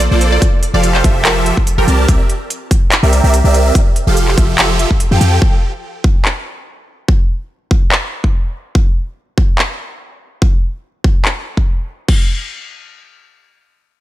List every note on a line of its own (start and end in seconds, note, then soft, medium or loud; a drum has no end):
0.00 0.28 D5 medium
0.00 closed hi-hat medium
0.11 0.39 A#1 loud
0.11 0.41 A#3 medium
0.11 0.41 F4 medium
0.11 0.41 A4 medium
0.11 0.41 C5 medium
0.11 0.41 D5 loud
0.21 closed hi-hat medium
0.32 0.69 D5 medium
0.42 kick loud
0.42 closed hi-hat medium
0.63 closed hi-hat medium
0.74 1.02 F1 medium
0.74 1.02 F3 medium
0.74 1.02 F4 medium
0.74 1.02 G4 medium
0.74 1.02 A4 medium
0.74 0.92 D5 medium
0.74 1.02 F5 medium
0.83 closed hi-hat medium
0.95 1.22 C5 medium
0.95 clap soft
1.04 1.52 F1 medium
1.04 1.54 F3 medium
1.04 1.54 F4 medium
1.04 1.55 G4 medium
1.04 1.54 A4 medium
1.04 1.54 E5 loud
1.04 kick loud
1.04 closed hi-hat medium
1.25 1.44 A#4 medium
1.25 clap loud
1.25 closed hi-hat medium
1.46 closed hi-hat medium
1.57 kick medium
1.67 closed hi-hat medium
1.78 1.86 F1 medium
1.78 1.85 F3 medium
1.78 1.85 F4 medium
1.78 1.85 G4 medium
1.78 1.85 A4 medium
1.78 2.05 A#4 medium
1.78 1.85 G5 loud
1.88 2.07 C2 loud
1.88 2.06 C4 medium
1.88 2.06 G4 medium
1.88 2.06 A#4 medium
1.88 2.06 D5 medium
1.88 2.06 A5 loud
1.88 closed hi-hat medium
2.08 2.18 C2 medium
2.08 2.20 C4 medium
2.08 2.20 G4 medium
2.08 2.20 D5 medium
2.08 2.20 E5 medium
2.08 kick loud
2.08 closed hi-hat medium
2.30 closed hi-hat medium
2.50 closed hi-hat medium
2.71 kick loud
2.71 closed hi-hat medium
2.92 clap loud
2.92 closed hi-hat medium
3.03 3.22 C2 medium
3.03 3.20 C4 medium
3.03 3.20 G4 medium
3.03 3.20 A#4 medium
3.03 3.20 D5 medium
3.03 3.20 E5 medium
3.13 closed hi-hat medium
3.24 3.42 C2 medium
3.24 3.34 C4 medium
3.24 3.34 G4 medium
3.24 3.34 A#4 medium
3.24 3.34 D5 medium
3.24 3.34 E5 loud
3.34 closed hi-hat medium
3.44 3.72 C2 medium
3.44 3.74 C4 medium
3.44 3.74 G4 medium
3.44 3.74 A#4 medium
3.44 3.74 D5 medium
3.44 3.74 E5 loud
3.54 closed hi-hat medium
3.75 kick loud
3.75 closed hi-hat medium
3.96 closed hi-hat medium
4.07 4.36 F1 medium
4.07 4.35 F3 medium
4.07 4.35 F4 medium
4.07 4.35 G4 medium
4.07 4.35 A4 medium
4.07 4.35 F5 medium
4.17 closed hi-hat medium
4.28 clap soft
4.38 4.86 F1 medium
4.38 4.88 F3 medium
4.38 4.88 F4 medium
4.38 4.88 G4 medium
4.38 4.88 A4 medium
4.38 4.88 E5 loud
4.38 kick loud
4.38 closed hi-hat medium
4.58 clap loud
4.58 closed hi-hat medium
4.79 closed hi-hat medium
4.91 kick medium
5.00 closed hi-hat medium
5.11 5.19 F2 medium
5.11 5.19 F3 medium
5.11 5.19 F4 medium
5.11 5.19 G4 medium
5.11 5.19 A4 medium
5.11 5.19 G5 medium
5.21 5.40 F2 medium
5.21 5.39 F3 medium
5.21 5.39 F4 medium
5.21 5.39 G4 medium
5.21 5.39 A4 medium
5.21 5.39 G5 loud
5.21 closed hi-hat medium
5.42 kick loud
6.04 kick loud
6.25 clap medium
7.08 kick loud
7.71 kick loud
7.92 clap medium
8.24 kick medium
8.75 kick loud
9.38 kick medium
9.59 clap medium
10.42 kick loud
11.04 kick medium
11.25 clap medium
11.57 kick medium
12.09 kick loud
12.09 crash medium